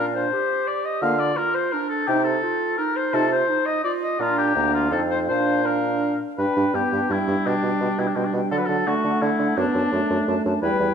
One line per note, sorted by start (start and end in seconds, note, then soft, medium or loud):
0.00 0.26 A#2 medium
0.00 0.32 D4 medium
0.00 0.14 F5 soft
0.15 0.69 C5 medium
0.32 1.03 G4 medium
0.67 0.86 D5 medium
0.85 1.04 D#5 medium
1.02 1.32 D3 medium
1.02 1.15 A#3 soft
1.02 1.37 F4 medium
1.02 1.20 F5 medium
1.02 1.19 F5 medium
1.19 1.38 D5 medium
1.37 1.75 F4 medium
1.37 1.56 A#4 medium
1.54 1.73 C5 medium
1.72 2.07 D4 medium
1.72 1.89 A#4 medium
1.89 2.09 A4 medium
2.07 2.37 C3 medium
2.07 2.42 D#4 medium
2.07 2.20 D#4 medium
2.07 2.24 G4 medium
2.07 2.24 G5 medium
2.24 2.76 A4 medium
2.43 2.77 F4 medium
2.78 3.15 D#4 medium
2.78 2.98 A#4 medium
2.96 3.15 C5 medium
3.13 3.43 C3 medium
3.13 3.26 D#4 medium
3.13 3.50 F4 medium
3.13 3.31 A4 medium
3.13 3.30 A5 medium
3.32 3.67 C5 medium
3.49 3.83 D#4 medium
3.66 3.83 D#5 medium
3.84 4.19 F4 medium
3.84 3.92 D5 medium
4.03 4.22 D#5 medium
4.19 4.53 A#2 medium
4.19 4.53 D4 soft
4.19 4.54 D4 medium
4.19 4.37 F4 medium
4.19 4.53 A#5 medium
4.38 4.73 G4 medium
4.55 4.90 D2 medium
4.55 4.91 A#3 medium
4.55 4.90 D4 medium
4.55 4.93 A#5 medium
4.74 4.91 F4 medium
4.91 5.30 F2 medium
4.91 5.28 C4 medium
4.91 5.31 D#4 soft
4.91 5.00 A4 medium
4.91 5.28 F5 medium
5.10 5.19 C5 medium
5.28 6.20 A#2 medium
5.28 5.65 D4 medium
5.28 6.19 D4 medium
5.28 5.67 C5 medium
5.28 5.64 F5 medium
5.65 6.20 D4 medium
5.65 6.20 A#4 medium
5.65 6.19 F5 medium
6.38 6.46 G2 soft
6.38 6.56 D4 medium
6.38 6.76 D4 medium
6.38 6.77 B4 medium
6.38 6.56 G5 soft
6.56 6.64 G2 soft
6.56 6.74 D4 soft
6.56 6.74 G5 soft
6.74 6.82 G2 soft
6.74 7.10 B3 soft
6.74 6.92 D4 soft
6.74 7.13 G4 medium
6.74 6.92 G5 soft
6.92 7.00 G2 soft
6.92 7.10 D4 soft
6.92 7.10 G5 soft
7.10 7.18 G2 medium
7.10 8.15 G3 soft
7.10 7.28 D4 soft
7.10 7.48 E4 medium
7.10 7.28 G5 soft
7.27 7.36 G2 medium
7.27 7.46 D4 soft
7.27 7.45 G5 soft
7.46 7.54 B2 medium
7.46 8.01 D4 medium
7.46 7.64 D4 soft
7.46 7.63 G5 soft
7.63 7.71 B2 soft
7.63 7.81 D4 soft
7.63 7.82 G5 soft
7.80 7.89 B2 medium
7.80 7.98 D4 soft
7.80 7.98 G5 soft
7.98 8.06 B2 soft
7.98 8.15 D4 soft
7.98 8.09 E4 soft
7.98 8.15 G5 soft
8.07 8.18 D4 soft
8.16 8.24 B2 soft
8.16 8.51 G3 soft
8.16 8.26 C4 soft
8.16 8.33 D4 soft
8.16 8.33 G5 soft
8.25 8.34 D4 soft
8.33 8.41 B2 medium
8.33 8.52 D4 soft
8.33 8.51 G5 soft
8.51 8.59 D3 medium
8.51 8.86 F#3 medium
8.51 8.69 D4 medium
8.51 8.59 A4 medium
8.51 8.69 F#5 soft
8.58 8.67 B4 medium
8.65 8.77 D3 soft
8.65 8.86 D4 soft
8.65 8.89 A4 medium
8.70 8.87 F#5 soft
8.87 8.95 D3 medium
8.87 9.56 A3 medium
8.87 9.04 D4 soft
8.87 9.23 F#4 medium
8.87 9.03 F#5 soft
9.04 9.12 D3 soft
9.04 9.21 D4 soft
9.04 9.21 F#5 soft
9.22 9.30 D3 medium
9.22 9.39 D4 medium
9.22 9.59 E4 medium
9.22 9.39 F#5 soft
9.39 9.47 D3 medium
9.39 9.57 D4 soft
9.39 9.57 F#5 soft
9.57 9.65 F#2 medium
9.57 9.94 B3 medium
9.57 9.74 D4 medium
9.57 10.45 D4 medium
9.57 9.75 A5 medium
9.74 9.82 F#2 medium
9.74 9.92 D4 medium
9.74 9.92 A5 soft
9.92 10.00 F#2 medium
9.92 10.61 A3 medium
9.92 10.09 D4 soft
9.92 10.10 A5 medium
10.10 10.18 F#2 medium
10.10 10.27 D4 medium
10.10 10.27 A5 soft
10.27 10.35 F#2 medium
10.27 10.44 D4 medium
10.27 10.45 A5 medium
10.45 10.53 F#2 medium
10.45 10.61 D4 soft
10.45 10.63 A5 soft
10.62 10.70 E2 medium
10.62 10.94 G3 medium
10.62 10.79 E4 medium
10.62 10.94 B4 loud
10.62 10.80 G5 medium
10.79 10.88 E2 medium
10.79 10.94 E4 medium
10.79 10.94 G5 soft